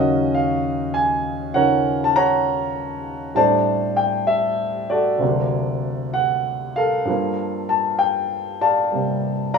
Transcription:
grand piano
Already playing: D#2 C#3 F#3 C#4 F#4 A#4 D#5
0.34 F5
0.94 G#5
1.54 C#3 F3 D#4 A#4 C#5 F#5
2.04 A5
2.16 C#5 F#5 A#5
3.35 A2 G3 A3 C4 D4 C5 D5 A5
3.97 G5
4.27 E5
4.90 F#4 A4 D5
5.18 D2 C3 F#3
5.23 A#3
6.14 F#5
6.76 A4 A#4 F5
7.05 G2 F3
7.10 A#3
7.69 A5
7.99 G5
8.61 D5 F5 A5
8.92 C3 G3 A#3
9.54 D5 F5 A#5

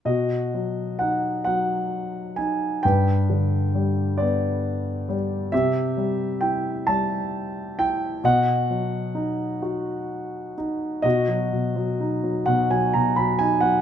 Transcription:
grand piano
0.05 B2 F#4 D#5
0.54 F#3
0.99 D#4 F#5
1.44 F#3 F#5
2.36 D#4 G#5
2.83 G2 B4 G5
3.30 D3
3.75 G3
4.17 B3 D5
5.09 G3
5.52 C3 G4 E5
5.97 G3
6.41 E4 G5
6.87 G3 A5
7.79 E4 G5
8.24 B2 D#5 F#5
8.70 F#3
9.15 D#4
9.62 F#4
10.58 D#4
11.02 B2 F#4 D#5
11.28 F#3
11.53 B2
11.76 F#3
12.00 D#4
12.24 F#3
12.46 B2 F#5
12.70 F#3 G#5
12.94 B2 A#5
13.16 F#3 B5
13.39 D#4 G#5
13.61 F#3 F#5

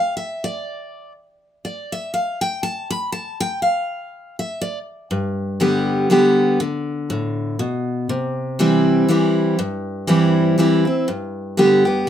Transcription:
steel-string acoustic guitar
Already playing: F5
0.17 E5
0.44 D5
1.65 D5
1.92 E5
2.14 F5
2.41 G5
2.63 A5
2.90 B5
3.12 A5
3.40 G5
3.62 F5
4.39 E5
4.61 D5
5.11 G2
5.60 D3 G3 B3 G4
6.10 D3 G3 B3 G4
6.60 D3
7.10 A2
7.59 B2
8.09 C3
8.59 E3 G3 C4 E4
9.09 E3 G3 C4 E4
9.59 G2
10.07 E3 G3 C4 E4
10.58 E3 G3 C4 E4
10.85 C4 E4
11.08 G2
11.57 D3 G3 B3 G4
11.85 B3 G4

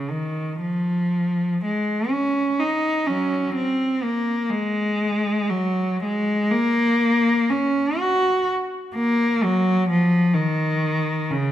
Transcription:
cello
0.10 D#3
0.61 F3
1.64 G#3
2.10 C#4
2.59 D#4
3.06 F#3 C#4
3.55 C4
4.03 A#3
4.49 G#3
5.50 F#3
6.03 G#3
6.51 A#3
7.50 C#4
7.99 F#4
8.94 A#3
9.43 F#3
9.89 F3
10.34 D#3
11.30 C#3

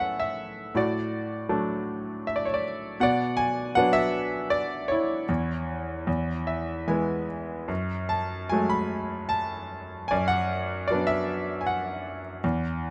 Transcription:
grand piano
Already playing: A2 B3 C#4 A4 C#5 E5 G#5 A5
0.00 F#5
0.20 E5
0.75 A2 F#4 D5
1.49 F#3 A3 D4
2.27 E5
2.36 D5
2.45 C#5
2.54 D5
3.00 B2 D5 F#5
3.37 G#5
3.75 F#3 B3 D4 F#5
3.93 E5
4.50 D5
4.88 E4 C#5
5.29 E2
6.07 E2
6.47 E5
6.88 E3 G#3 B3 G#5
7.68 F#2
8.09 A5
8.49 F#3 G#3 A3 G#5
8.70 B5
9.29 A5
10.08 F#2 D5 G#5
10.28 F#5
10.88 F#3 B3 D5
10.92 D4
11.07 E5
11.61 G#5
11.67 F#5
12.44 E2

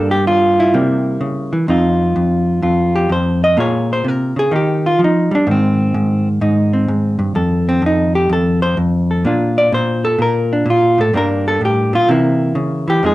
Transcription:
hollow-body jazz guitar
Already playing: G2 G3 A#3 D4 A4
0.11 G4
0.27 F4
0.60 E4
0.74 C3 G3 A#3
1.21 C#3
1.53 E3
1.68 F2 C4 D#4 F4
2.16 F2
2.62 F2 F4
2.96 G4
3.09 F2 C5
3.44 D#5
3.57 A#2 A#3 F4 G#4 C#5
3.93 C5
4.05 C3 A#4
4.36 C#3 G#4
4.51 D#3 D#4
4.56 G4
4.86 F4
4.99 F3
5.04 D#4
5.31 G3 D4
5.47 G#2 D#3
5.51 C4
5.94 G#2
6.41 G#2 D#4
6.73 C4
6.88 G#2
7.19 G2
7.35 F2 A4
7.69 C4
7.82 F2
7.86 D#4
8.15 G4
8.29 F2 A4
8.62 C5
8.77 F2
9.11 A4
9.25 A#2 A#3 D4 F4
9.58 D5
9.72 A#2 C5
10.05 A4
10.18 A#2 A#4
10.53 D4
10.66 A#2
10.70 F4
10.98 A2 A4
11.13 G2 G3 A#3 D4 A#4
11.48 A4
11.61 A2
11.65 G4
11.93 A#2 F4
12.09 C3 E3 A#3 E4
12.55 C#3
12.88 E3 G4
13.03 F2 F3 G#3 D#4 G#4

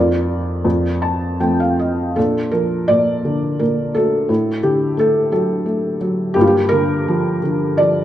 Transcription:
felt piano
Already playing: F2 F4 A#4 D5
0.65 F2
1.02 A5
1.40 F3 A3 C4 G5
1.60 F5
1.79 D#5
2.16 A#2 D4 A4
2.51 F3 A#4
2.88 A#2 D5
3.25 D3
3.59 A#2 A#4
3.95 A3 F#4 A4
4.29 A2
4.63 D3 G4
4.97 A3 A4
5.32 F#3 A4
5.66 A3
6.01 F#3
6.34 G2 A#3 G4
6.41 F4
6.47 G4
6.69 D3 A#4
7.08 F3
7.43 D3
7.78 F3 D5

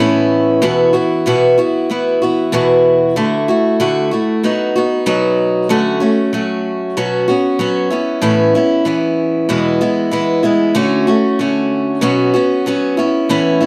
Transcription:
steel-string acoustic guitar
0.00 A2 E3 B3 C#4 E4
0.62 E2 B2 E3 B3 E4 F#4
0.93 E3 B3 E4 F#4
1.26 E2 B2 E3 B3 E4 F#4
1.58 E3 B3 E4 F#4
1.90 E3 B3 E4 F#4
2.22 E3 B3 E4 F#4
2.52 E2 B2 E3 B3 E4 F#4
3.16 D3 A3 E4 F#4
3.48 A3 E4 F#4
3.80 D3 A3 E4 F#4
4.11 A3 E4 F#4
4.43 F#3 B3 D#4 F#4
4.76 B3 D#4 F#4
5.06 B2 F#3 B3 D#4 F#4
5.69 D3 F#3 A3 C#4 F#4
6.00 A3 C#4 F#4
6.33 F#3 A3 C#4 F#4
6.97 B2 F#3 B3 C#4 F#4
7.28 B3 C#4 F#4
7.59 F#3 B3 C#4 F#4
7.90 B3 C#4 E4
8.22 A2 E3 B3 C#4 E4
8.55 B3 C#4 E4
8.85 E3 B3 C#4 E4
9.49 E2 B2 E3 G#3 B3 E4
9.81 E3 G#3 B3 E4
10.11 E3 G#3 B3 E4
10.43 E3 G#3 B3 E4
10.75 D3 A3 C#4 F#4
11.07 A3 C#4 F#4
11.39 D3 A3 C#4 F#4
12.01 B2 F#3 B3 C#4 F#4
12.34 B3 C#4 F#4
12.66 F#3 B3 C#4 F#4
12.97 B3 C#4 E4
13.29 A2 E3 B3 C#4 E4
13.60 B3 C#4 E4

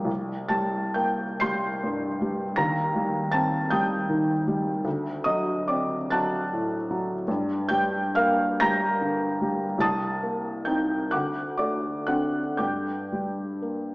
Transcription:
felt piano
Already playing: A#2 G3 A#3 D5 D#5 A#5 D6 D#6
0.05 C2
0.48 G3 A5 A6
0.94 A#3 G5 G6
1.40 G3 C6 G6 C7
1.83 G2
2.21 G3
2.56 D#2 A#5 A#6
2.95 G3
3.32 C4 A5 A6
3.70 G3 G5 D#6 G6
4.09 D#3
4.47 G3
4.85 D2
5.24 F#3 D#5 D#6
5.68 C4 D5 D6
6.10 F#3 A5 F#6 A6
6.53 A2
6.91 F#3
7.28 G2
7.69 G3 G5 G6
8.15 A#3 F5 F6
8.60 G3 A#5 G6 A#6
9.01 D3
9.41 G3
9.78 C2 A5 D#6 A6
10.23 A#3
10.65 C4 D#4 G5 G6
11.11 D2 F#5 D6 F#6
11.57 A3 D5 D6
12.07 C4 D4 F#5 F#6
12.57 G2 G5 D6 G6
13.12 G3
13.62 A#3

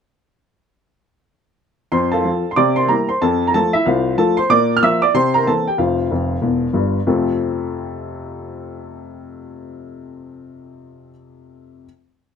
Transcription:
upright piano
1.92 F2 C5 C6
2.12 A4 F5 A5
2.25 F3 C4 F4
2.51 C6
2.56 C3 D5 D6
2.76 C5 C6
2.88 G3 A#3 E4 A#4 A#5
3.09 C5 C6
3.22 F2 A4 A5
3.47 A#5
3.54 F3 A3 F4 A4 A5
3.73 E4 E5
3.86 C2 F4 C5 F5
4.18 F3 A3 F4 A4 A5
4.37 C5 C6
4.50 A#2 D5 D6
4.77 F6
4.83 F3 A#3 F4 E5 E6
5.02 D5 D6
5.14 C3 C5 C6
5.34 A#4 A#5
5.47 E3 A#3 C4 A4 A5
5.68 G4 G5
5.78 F1 F2 F4 C5 F5
6.11 F1 F2
6.42 E1 E2
6.73 G1 G2
7.07 F2 C3 A3 C4 F4 A4

